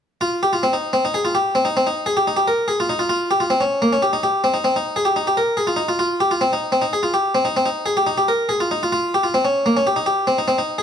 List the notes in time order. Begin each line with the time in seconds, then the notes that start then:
0.21 F4
0.43 G4
0.53 F4
0.63 C4
0.73 D#4
0.93 C4
1.05 D#4
1.14 G#4
1.25 F4
1.35 G4
1.55 C4
1.65 D#4
1.77 C4
1.87 D#4
2.06 G#4
2.17 G4
2.27 D#4
2.37 G4
2.48 A#4
2.68 G#4
2.80 F4
2.89 D#4
2.99 F4
3.09 F4
3.31 G4
3.40 F4
3.50 C4
3.61 C#4
3.82 A#3
3.93 C#4
4.02 G4
4.13 D#4
4.23 G4
4.44 C4
4.54 D#4
4.64 C4
4.76 D#4
4.96 G#4
5.05 G4
5.16 D#4
5.27 G4
5.37 A#4
5.57 G#4
5.67 F4
5.76 D#4
5.89 F4
5.99 F4
6.20 G4
6.31 F4
6.41 C4
6.53 D#4
6.72 C4
6.82 D#4
6.93 G#4
7.03 F4
7.14 G4
7.35 C4
7.45 D#4
7.57 C4
7.66 D#4
7.86 G#4
7.97 G4
8.07 D#4
8.18 G4
8.28 A#4
8.49 G#4
8.60 F4
8.71 D#4
8.83 F4
8.92 F4
9.14 G4
9.23 F4
9.34 C4
9.45 C#4
9.66 A#3
9.77 C#4
9.87 G4
9.96 D#4
10.06 G4
10.27 C4
10.38 D#4
10.48 C4
10.58 D#4
10.78 G#4